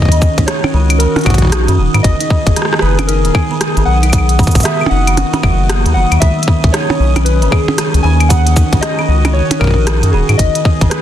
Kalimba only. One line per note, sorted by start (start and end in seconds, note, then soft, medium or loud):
0.12 0.21 D#3 loud
0.22 0.33 C#3 medium
0.38 0.45 D#4 medium
0.48 0.59 D#3 medium
0.74 0.85 D#3 loud
1.00 1.15 D#3 loud
1.16 1.23 C#3 medium
1.26 1.37 D#4 medium
1.42 1.49 D#3 medium
1.68 1.75 D#3 loud
1.94 2.04 D#3 loud
2.04 2.15 C#3 medium
2.20 2.27 D#4 medium
2.30 2.42 D#3 medium
2.56 2.68 D#3 loud
2.82 2.98 D#3 loud
2.99 3.06 C#3 medium
3.09 3.20 D#4 medium
3.25 3.32 D#3 medium
3.51 3.58 D#3 loud
3.77 3.86 D#3 loud
3.87 3.98 C#3 medium
4.03 4.10 D#4 medium
4.13 4.24 D#3 medium
4.39 4.50 D#3 loud
4.65 4.80 D#3 medium
4.81 4.88 C#3 medium
4.91 5.02 D#4 medium
5.07 5.14 D#3 medium
5.33 5.40 D#3 loud
5.43 5.50 F#3 medium
5.69 5.81 A#3 loud
5.86 5.90 D#3 medium
5.96 6.10 D#3 medium
6.12 6.20 D#3 medium
6.22 6.33 D#3 loud
6.48 6.63 D#3 loud
6.64 6.71 C#3 medium
6.74 6.85 D#4 medium
6.90 6.97 D#3 medium
7.16 7.23 D#3 loud
7.42 7.52 D#3 loud
7.52 7.63 C#3 medium
7.68 7.75 D#4 medium
7.78 7.89 D#3 medium
8.04 8.15 D#3 loud
8.30 8.46 D#3 loud
8.46 8.53 C#3 medium
8.56 8.68 D#4 medium
8.73 8.79 D#3 medium
8.99 9.06 D#3 loud
9.25 9.34 D#3 loud
9.35 9.46 C#3 medium
9.51 9.58 D#4 medium
9.61 9.72 D#3 medium
9.87 9.98 D#3 loud
10.13 10.28 D#3 loud
10.29 10.36 C#3 medium
10.39 10.50 D#4 medium
10.55 10.62 D#3 medium
10.81 10.88 D#3 loud